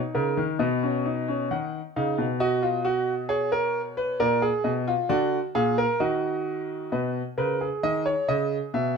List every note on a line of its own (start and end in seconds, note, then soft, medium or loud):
0.00 0.57 D#4 medium
0.15 0.37 C#3 medium
0.15 0.43 A#4 medium
0.37 0.59 D#3 medium
0.59 1.47 B2 medium
0.59 0.81 B3 medium
0.59 1.47 D#5 medium
0.83 1.05 C#4 medium
1.06 1.27 D#4 medium
1.28 1.50 C#4 medium
1.51 1.78 D#3 medium
1.51 1.79 D#4 medium
1.51 1.79 F#5 medium
1.96 2.18 C#3 medium
1.96 2.24 D#4 medium
1.96 2.24 F5 medium
2.18 4.15 B2 medium
2.40 2.62 F#4 loud
2.40 3.27 D#5 medium
2.62 2.84 F4 medium
2.85 3.12 F#4 loud
3.29 3.51 G#4 loud
3.29 4.16 C#5 medium
3.52 3.80 A#4 loud
3.97 4.19 B4 medium
4.20 4.47 A#2 medium
4.20 4.41 A#4 loud
4.20 4.47 D5 medium
4.42 4.70 G#4 loud
4.64 4.92 B2 medium
4.64 4.92 D#5 medium
4.88 5.09 F4 loud
5.09 5.37 D3 medium
5.09 5.37 F#4 loud
5.09 5.37 D5 medium
5.55 5.83 A#2 medium
5.55 5.77 G#4 loud
5.55 5.83 F5 medium
5.78 6.00 A#4 loud
6.00 6.89 D#3 medium
6.00 6.89 F#4 medium
6.00 6.89 D#5 medium
6.92 7.20 B2 medium
6.92 7.20 B4 medium
6.92 7.20 D#5 medium
7.38 7.66 C#3 medium
7.38 7.60 A#4 medium
7.38 7.66 B4 medium
7.61 8.97 G#4 medium
7.83 8.11 D#3 medium
7.83 8.05 D#5 loud
8.06 8.28 C#5 medium
8.28 8.57 C#3 medium
8.28 8.57 D#5 loud
8.74 8.97 B2 medium
8.74 8.96 E5 medium